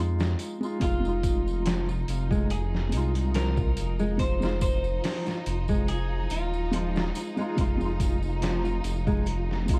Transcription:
0.00 0.35 F2 loud
0.00 0.55 G#3 medium
0.00 0.56 D#4 medium
0.00 0.57 F4 medium
0.20 snare loud
0.20 tambourine soft
0.39 closed hi-hat medium
0.39 tambourine medium
0.60 0.78 G#3 medium
0.60 0.79 D#4 medium
0.60 0.79 F4 medium
0.60 tambourine soft
0.80 2.04 F1 medium
0.80 0.99 G#3 medium
0.80 9.79 D#4 medium
0.80 1.01 D#4 medium
0.80 9.79 F4 medium
0.80 2.04 F4 loud
0.80 kick loud
0.80 closed hi-hat medium
0.80 tambourine soft
0.84 1.02 F4 medium
1.00 2.86 G#3 medium
1.04 2.88 D#4 medium
1.04 2.90 F4 medium
1.04 tambourine soft
1.23 kick medium
1.23 closed hi-hat medium
1.23 tambourine medium
1.48 tambourine soft
1.66 1.87 F3 medium
1.66 snare loud
1.66 closed hi-hat medium
1.66 tambourine medium
1.88 2.00 F4 medium
1.88 tambourine soft
2.08 2.94 F1 medium
2.08 closed hi-hat medium
2.08 tambourine medium
2.31 2.49 G#3 medium
2.31 kick medium
2.31 tambourine soft
2.50 3.31 G#4 medium
2.50 closed hi-hat medium
2.50 tambourine soft
2.75 snare soft
2.89 3.79 C2 medium
2.89 4.13 G#3 medium
2.89 4.15 D#4 medium
2.89 closed hi-hat medium
2.89 tambourine medium
2.97 4.17 F4 medium
3.15 closed hi-hat soft
3.15 tambourine soft
3.34 3.56 F3 medium
3.34 4.19 A#4 loud
3.34 snare loud
3.34 closed hi-hat medium
3.34 tambourine soft
3.57 3.69 F4 medium
3.57 kick medium
3.57 tambourine soft
3.77 5.00 F1 medium
3.77 closed hi-hat medium
3.77 tambourine medium
3.99 4.18 G#3 loud
3.99 tambourine soft
4.18 4.38 G#3 medium
4.18 4.39 D#4 medium
4.18 4.59 C5 loud
4.18 kick loud
4.18 closed hi-hat medium
4.18 tambourine soft
4.22 4.40 F4 medium
4.40 4.58 G#3 medium
4.40 4.59 D#4 medium
4.40 4.60 F4 medium
4.40 snare medium
4.40 tambourine soft
4.61 5.88 C5 loud
4.61 kick medium
4.61 closed hi-hat medium
4.61 tambourine medium
4.84 tambourine soft
5.04 5.25 F3 medium
5.04 snare loud
5.04 open hi-hat medium
5.04 tambourine soft
5.26 5.38 F4 medium
5.26 snare medium
5.26 tambourine soft
5.46 6.27 F1 medium
5.46 closed hi-hat medium
5.46 tambourine medium
5.68 5.87 G#3 loud
5.68 kick medium
5.68 tambourine soft
5.88 6.31 G#4 medium
5.88 closed hi-hat medium
5.88 tambourine soft
6.30 7.12 D#1 medium
6.30 7.11 F4 medium
6.30 closed hi-hat medium
6.30 tambourine medium
6.54 tambourine soft
6.71 6.94 F3 medium
6.71 7.32 G#3 medium
6.71 7.33 D#4 medium
6.71 closed hi-hat medium
6.71 tambourine soft
6.75 7.34 F4 medium
6.96 7.07 F4 medium
6.96 snare loud
6.96 tambourine soft
7.15 closed hi-hat medium
7.15 tambourine medium
7.37 7.54 G#3 medium
7.37 7.56 G#3 loud
7.37 7.55 D#4 medium
7.37 7.56 F4 loud
7.37 tambourine soft
7.56 8.80 F1 medium
7.56 7.76 G#3 medium
7.56 7.77 D#4 medium
7.56 7.78 F4 loud
7.56 kick loud
7.56 closed hi-hat medium
7.56 tambourine soft
7.77 9.62 G#3 medium
7.77 9.64 D#4 medium
7.77 tambourine soft
7.85 9.66 F4 medium
8.00 kick loud
8.00 closed hi-hat medium
8.00 tambourine medium
8.23 tambourine soft
8.42 8.63 F3 medium
8.42 snare loud
8.42 closed hi-hat medium
8.42 tambourine soft
8.65 8.76 F4 medium
8.65 tambourine soft
8.84 9.70 F1 medium
8.84 closed hi-hat medium
8.84 tambourine medium
9.07 9.25 G#3 loud
9.07 kick medium
9.07 tambourine soft
9.26 closed hi-hat medium
9.26 tambourine soft
9.51 snare soft
9.66 9.79 C2 medium
9.66 9.79 G#3 medium
9.66 kick medium
9.66 closed hi-hat medium
9.66 tambourine medium
9.70 9.79 D#4 medium
9.70 9.79 F4 medium

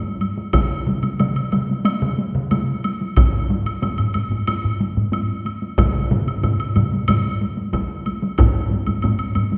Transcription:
0.21 taiko high soft
0.21 high woodblock soft
0.38 taiko high medium
0.53 taiko medium
0.53 taiko mid loud
0.53 taiko high medium
0.53 high woodblock medium
0.87 taiko mid medium
0.87 taiko high medium
1.03 taiko mid medium
1.03 taiko high medium
1.03 high woodblock soft
1.20 taiko mid medium
1.20 taiko high medium
1.20 high woodblock soft
1.36 high woodblock soft
1.52 taiko mid medium
1.52 taiko high medium
1.52 high woodblock soft
1.69 taiko high medium
1.85 taiko high medium
1.85 high woodblock medium
2.02 taiko mid loud
2.18 taiko high medium
2.35 taiko mid medium
2.35 taiko high medium
2.51 taiko mid medium
2.51 taiko high medium
2.51 high woodblock soft
2.84 taiko high medium
2.84 high woodblock soft
3.02 taiko high soft
3.17 taiko medium
3.17 taiko low-mid medium
3.17 taiko high medium
3.17 high woodblock medium
3.34 taiko low-mid medium
3.50 taiko low-mid medium
3.50 taiko high medium
3.66 taiko high soft
3.66 high woodblock soft
3.82 taiko low-mid medium
3.82 taiko high medium
3.82 high woodblock soft
3.98 taiko low-mid medium
3.98 high woodblock soft
4.14 taiko low-mid medium
4.14 taiko high medium
4.14 high woodblock soft
4.31 taiko low-mid medium
4.31 taiko high medium
4.47 taiko low-mid medium
4.47 taiko high medium
4.47 high woodblock medium
4.65 taiko low-mid medium
4.80 taiko low-mid medium
4.80 taiko high medium
4.97 taiko low-mid medium
4.97 taiko high soft
5.12 taiko high medium
5.12 high woodblock soft
5.45 taiko high soft
5.45 high woodblock soft
5.62 taiko high soft
5.78 taiko loud
5.78 taiko low-mid medium
5.78 taiko mid medium
5.78 taiko high medium
5.78 high woodblock medium
5.95 taiko low-mid medium
5.95 taiko mid medium
6.11 taiko low-mid medium
6.11 taiko mid loud
6.11 taiko high soft
6.27 taiko high medium
6.27 high woodblock soft
6.43 taiko low-mid medium
6.43 taiko mid medium
6.43 taiko high medium
6.43 high woodblock soft
6.60 high woodblock soft
6.76 taiko low-mid medium
6.76 taiko mid medium
6.76 taiko high medium
6.76 high woodblock soft
6.93 taiko high soft
7.08 taiko low-mid medium
7.08 taiko mid medium
7.08 taiko high medium
7.08 high woodblock medium
7.41 taiko high medium
7.57 taiko high soft
7.73 taiko medium
7.73 taiko high medium
7.73 high woodblock soft
8.06 taiko high medium
8.06 high woodblock soft
8.22 taiko high medium
8.38 taiko medium
8.38 taiko low-mid loud
8.38 taiko high medium
8.38 high woodblock medium
8.71 taiko low-mid medium
8.71 taiko high medium
8.86 taiko low-mid medium
8.86 taiko high medium
8.86 high woodblock soft
9.02 taiko low-mid medium
9.02 taiko high medium
9.02 high woodblock soft
9.19 high woodblock soft
9.35 taiko low-mid medium
9.35 taiko high medium
9.35 high woodblock soft
9.52 taiko high soft

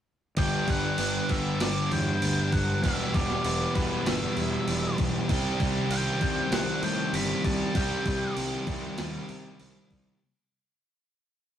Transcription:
0.37 0.56 G1 medium
0.37 1.28 G2 medium
0.37 1.28 D3 medium
0.37 1.29 G3 medium
0.37 2.83 B3 medium
0.37 2.83 D4 loud
0.37 2.86 G4 loud
0.37 0.69 G5 medium
0.37 kick loud
0.37 crash medium
0.67 0.87 G1 medium
0.67 1.31 F#5 loud
0.67 kick medium
0.67 crash medium
0.98 1.17 G1 medium
0.98 2.20 B3 medium
0.98 crash medium
1.29 1.49 G1 medium
1.29 2.82 G2 medium
1.29 2.82 D3 medium
1.29 2.84 G3 medium
1.29 1.62 E5 medium
1.29 kick medium
1.29 crash medium
1.60 1.80 G1 medium
1.60 1.93 D5 medium
1.60 snare loud
1.60 crash medium
1.91 2.10 E2 medium
1.91 2.52 G5 loud
1.91 crash medium
2.22 2.41 D2 medium
2.22 2.83 B3 medium
2.22 crash medium
2.52 2.72 G1 medium
2.52 2.83 F#3 medium
2.52 2.84 F#5 medium
2.52 kick medium
2.52 crash medium
2.82 3.03 E1 medium
2.82 3.73 E2 medium
2.82 3.74 B2 medium
2.82 3.74 E3 medium
2.82 3.14 G3 medium
2.82 5.30 G3 medium
2.82 5.29 B3 medium
2.82 5.31 G4 medium
2.82 3.15 E5 loud
2.82 kick loud
2.82 crash medium
3.14 3.33 E1 medium
3.14 3.76 G3 medium
3.14 3.75 D5 loud
3.14 kick medium
3.14 crash medium
3.30 snare soft
3.44 3.64 E1 medium
3.44 4.67 B3 medium
3.44 crash medium
3.75 3.95 E1 loud
3.75 5.28 E2 medium
3.75 5.28 B2 medium
3.75 5.27 E3 medium
3.75 4.06 G3 medium
3.75 4.07 B4 medium
3.75 kick medium
3.75 crash medium
4.06 4.25 G1 loud
4.06 4.37 G3 medium
4.06 4.95 E5 medium
4.06 snare loud
4.06 crash medium
4.37 4.56 E2 medium
4.37 4.98 G3 medium
4.37 crash soft
4.67 4.87 E1 medium
4.67 5.30 B3 medium
4.67 crash medium
4.98 5.18 B1 loud
4.98 5.29 G3 medium
4.98 kick medium
4.98 crash medium
5.29 5.48 C2 loud
5.29 6.22 C3 medium
5.29 7.74 D#3 medium
5.29 5.59 G3 medium
5.29 6.22 G3 medium
5.29 6.20 C4 medium
5.29 7.77 G4 loud
5.29 kick loud
5.29 crash medium
5.60 5.79 C2 medium
5.60 6.21 G3 medium
5.60 kick medium
5.60 crash medium
5.89 6.09 C2 medium
5.89 7.13 C4 medium
5.89 6.52 G5 medium
5.89 crash medium
6.21 6.40 C2 medium
6.21 7.73 C3 medium
6.21 6.52 G3 medium
6.21 7.74 G3 medium
6.21 7.75 C4 medium
6.21 kick medium
6.21 crash medium
6.51 6.70 C2 loud
6.51 6.81 G3 medium
6.51 6.81 F#5 medium
6.51 snare loud
6.51 crash medium
6.82 7.02 A2 medium
6.82 7.43 G3 medium
6.82 7.15 G5 medium
6.82 crash medium
7.13 7.32 G1 medium
7.13 8.36 C4 medium
7.13 7.45 B5 loud
7.13 crash medium
7.44 7.64 C2 medium
7.44 7.74 G3 medium
7.44 7.77 A5 medium
7.44 kick medium
7.44 crash medium
7.74 7.94 C2 medium
7.74 8.65 C3 medium
7.74 10.20 D#3 medium
7.74 8.65 G3 medium
7.74 8.05 G3 medium
7.74 8.66 C4 medium
7.74 10.21 G4 loud
7.74 8.33 G5 medium
7.74 kick loud
7.74 crash medium
8.05 8.25 C2 medium
8.05 8.66 G3 medium
8.05 kick medium
8.05 crash medium
8.37 8.56 C2 medium
8.37 9.59 C4 medium
8.37 crash medium
8.67 8.86 C2 medium
8.67 10.20 C3 medium
8.67 8.97 G3 medium
8.67 10.20 G3 medium
8.67 10.19 C4 medium
8.67 kick medium
8.67 crash medium
8.98 9.17 D#2 medium
8.98 9.28 G3 medium
8.98 snare loud
8.98 crash medium
9.29 9.48 C3 medium
9.29 9.90 G3 medium
9.29 crash soft
9.60 9.79 C2 medium
9.60 10.22 C4 medium
9.60 crash medium
9.91 10.10 C2 medium
9.91 10.22 G3 medium
9.91 kick medium
9.91 crash medium

